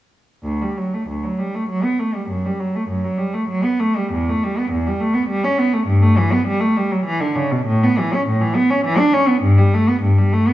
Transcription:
0.43 0.60 D2 medium
0.62 0.77 G3 medium
0.77 0.93 F#3 medium
0.94 1.09 A3 medium
1.08 1.23 D2 medium
1.23 1.39 F#3 soft
1.39 1.54 G3 medium
1.55 1.70 A3 medium
1.69 1.84 F#3 medium
1.83 1.99 B3 medium
1.99 2.14 A3 medium
2.14 2.29 G3 medium
2.29 2.43 F#2 medium
2.46 2.59 G3 medium
2.59 2.74 F#3 medium
2.76 2.89 A3 medium
2.88 3.03 F#2 medium
3.04 3.18 F#3 medium
3.18 3.33 G3 medium
3.34 3.48 A3 medium
3.49 3.63 F#3 medium
3.64 3.79 B3 medium
3.80 3.95 A3 medium
3.96 4.12 G3 medium
4.13 4.28 E2 medium
4.29 4.44 A3 medium
4.44 4.58 G3 medium
4.58 4.73 B3 medium
4.71 4.86 E2 medium
4.87 5.02 G3 medium
5.00 5.16 A3 medium
5.14 5.30 B3 medium
5.29 5.44 G3 medium
5.44 5.59 C#4 medium
5.58 5.74 B3 medium
5.73 5.88 A3 medium
5.87 6.02 G2 medium
6.02 6.18 A3 medium
6.18 6.33 E3 medium
6.33 6.48 B3 medium
6.47 6.62 G3 medium
6.60 6.76 A3 medium
6.77 6.92 G3 medium
6.91 7.06 F#3 medium
7.05 7.20 E3 medium
7.20 7.36 D3 medium
7.35 7.51 C#3 medium
7.51 7.68 B2 medium
7.67 7.83 A2 medium
7.83 7.99 B3 medium
7.98 8.14 E3 medium
8.14 8.28 C#4 medium
8.27 8.42 A2 medium
8.41 8.56 E3 medium
8.55 8.70 B3 medium
8.70 8.85 C#4 medium
8.85 8.99 E3 medium
8.97 9.13 D4 medium
9.13 9.28 C#4 medium
9.28 9.43 B3 medium
9.42 9.57 G2 medium
9.58 9.73 G3 medium
9.73 9.88 A3 medium
9.89 10.03 B3 medium
10.02 10.17 G2 medium
10.18 10.33 G3 medium
10.33 10.47 A3 medium
10.48 10.53 B3 medium

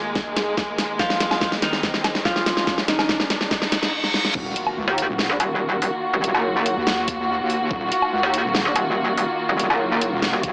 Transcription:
0.00 3.89 D#2 medium
0.00 3.89 D#3 medium
0.00 3.91 G#3 medium
0.00 3.89 A#3 medium
0.00 riser medium
0.15 kick loud
0.15 snare medium
0.37 snare medium
0.37 closed hi-hat medium
0.57 kick loud
0.57 snare medium
0.78 snare medium
0.78 open hi-hat medium
0.99 1.54 F3 medium
0.99 1.54 F4 medium
0.99 kick loud
0.99 snare medium
1.10 snare medium
1.20 snare medium
1.20 closed hi-hat medium
1.31 snare medium
1.31 low woodblock medium
1.41 kick medium
1.41 snare loud
1.52 snare medium
1.62 2.17 D#3 medium
1.62 2.17 D#4 medium
1.62 snare loud
1.62 closed hi-hat medium
1.73 snare medium
1.83 kick loud
1.83 snare loud
1.94 snare medium
2.04 snare loud
2.04 closed hi-hat medium
2.04 low woodblock medium
2.15 snare medium
2.25 2.80 F3 medium
2.25 2.80 F4 loud
2.25 kick loud
2.25 snare loud
2.36 snare medium
2.46 snare loud
2.46 open hi-hat medium
2.57 snare medium
2.67 kick loud
2.67 snare loud
2.78 snare medium
2.88 3.20 D#3 medium
2.88 3.20 D#4 medium
2.88 snare loud
2.88 closed hi-hat medium
2.99 snare medium
2.99 low woodblock medium
3.09 kick loud
3.09 snare loud
3.20 snare medium
3.30 snare loud
3.30 closed hi-hat medium
3.41 snare medium
3.51 kick loud
3.51 snare loud
3.51 reverse cymbal medium
3.62 snare loud
3.72 snare loud
3.72 closed hi-hat medium
3.83 snare medium
3.83 closed hi-hat soft
4.04 snare medium
4.14 snare medium
4.25 snare medium
4.35 4.54 D#1 medium
4.35 10.53 D#3 medium
4.35 10.53 A#3 medium
4.35 10.53 F4 medium
4.35 10.53 F#4 medium
4.35 kick loud
4.35 crash loud
4.35 impact medium
4.56 closed hi-hat medium
4.67 low woodblock medium
4.77 4.86 C#2 loud
4.88 5.07 D#2 loud
4.98 closed hi-hat medium
5.09 5.28 D#1 loud
5.19 snare loud
5.30 5.38 A#1 loud
5.40 5.80 D#1 medium
5.40 closed hi-hat medium
5.40 low woodblock soft
5.82 5.91 D#1 medium
5.82 open hi-hat medium
6.13 6.33 D#1 loud
6.24 closed hi-hat medium
6.34 6.75 F#1 loud
6.34 low woodblock soft
6.66 closed hi-hat medium
6.76 7.38 D#2 loud
6.87 snare loud
7.08 kick loud
7.08 closed hi-hat medium
7.39 7.69 D#2 loud
7.50 open hi-hat medium
7.71 7.90 D#1 loud
7.71 kick loud
7.92 closed hi-hat medium
8.02 low woodblock medium
8.13 8.22 C#2 loud
8.23 8.43 D#2 loud
8.34 closed hi-hat medium
8.44 8.64 D#1 loud
8.55 snare loud
8.65 8.74 A#1 loud
8.76 9.16 D#1 loud
8.76 closed hi-hat medium
8.76 low woodblock medium
9.18 9.26 D#1 medium
9.18 open hi-hat medium
9.49 9.68 D#1 loud
9.60 closed hi-hat medium
9.70 10.10 F#1 loud
9.70 low woodblock medium
10.02 closed hi-hat medium
10.12 10.31 D#1 loud
10.22 snare loud
10.33 10.53 D#1 loud
10.43 kick loud
10.43 closed hi-hat medium

